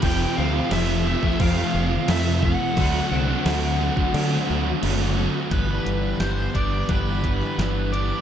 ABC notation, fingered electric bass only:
X:1
M:4/4
L:1/8
Q:1/4=88
K:G
V:1 name="Fingered electric bass" clef=bass
=F,,, D,, F,,,2 =F,, F,,, F,,2 | D,, C,, D,,2 D, D,, F,,,2 | G,,, G,,, G,,, G,,, G,,,2 G,,,2 |]